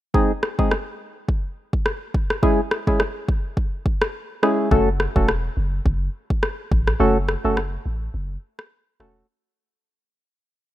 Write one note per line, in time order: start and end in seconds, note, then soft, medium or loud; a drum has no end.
0.14 0.32 G#3 medium
0.14 0.32 C4 medium
0.14 0.32 D#4 medium
0.14 0.32 G#4 loud
0.14 kick loud
0.43 cross-stick medium
0.59 0.73 G#3 medium
0.59 0.73 C4 medium
0.59 0.74 D#4 medium
0.59 0.74 G#4 medium
0.59 kick medium
0.71 cross-stick medium
1.28 kick medium
1.73 kick medium
1.86 cross-stick medium
2.14 kick medium
2.30 cross-stick medium
2.43 2.60 G#3 medium
2.43 2.60 C#4 medium
2.43 2.61 E4 medium
2.43 2.61 G#4 loud
2.43 kick loud
2.71 cross-stick medium
2.87 3.02 G#3 medium
2.87 3.02 C#4 medium
2.87 3.02 E4 medium
2.87 3.02 G#4 medium
2.87 kick medium
3.00 cross-stick medium
3.29 kick medium
3.57 kick medium
3.86 kick medium
4.02 cross-stick loud
4.43 4.69 G#3 medium
4.43 4.69 C#4 medium
4.43 4.69 E4 medium
4.43 4.70 G#4 medium
4.43 cross-stick medium
4.71 5.07 F#1 loud
4.71 4.89 A3 loud
4.71 4.89 C#4 medium
4.71 4.89 F#4 medium
4.71 4.89 A4 loud
4.71 kick loud
5.00 cross-stick medium
5.16 5.49 E1 medium
5.16 5.30 A3 medium
5.16 5.31 C#4 medium
5.16 5.31 F#4 medium
5.16 5.31 A4 medium
5.16 kick medium
5.29 cross-stick medium
5.57 5.80 F#1 medium
5.86 6.09 F#1 loud
5.86 kick medium
6.30 kick medium
6.43 cross-stick medium
6.71 6.95 A1 loud
6.71 kick loud
6.88 cross-stick medium
7.00 7.36 F#1 loud
7.00 7.17 A3 loud
7.00 7.18 C#4 medium
7.00 7.18 F#4 medium
7.00 7.18 A4 loud
7.29 cross-stick medium
7.44 7.78 F#1 medium
7.44 7.59 A3 medium
7.44 7.59 C#4 medium
7.44 7.59 F#4 medium
7.44 7.59 A4 medium
7.57 cross-stick medium
7.86 8.09 A1 medium
8.14 8.37 F#1 loud
8.59 cross-stick loud
9.00 9.23 E1 loud
9.00 9.26 A3 medium
9.00 9.26 C#4 medium
9.00 9.27 F#4 medium
9.00 9.27 A4 medium
9.00 cross-stick medium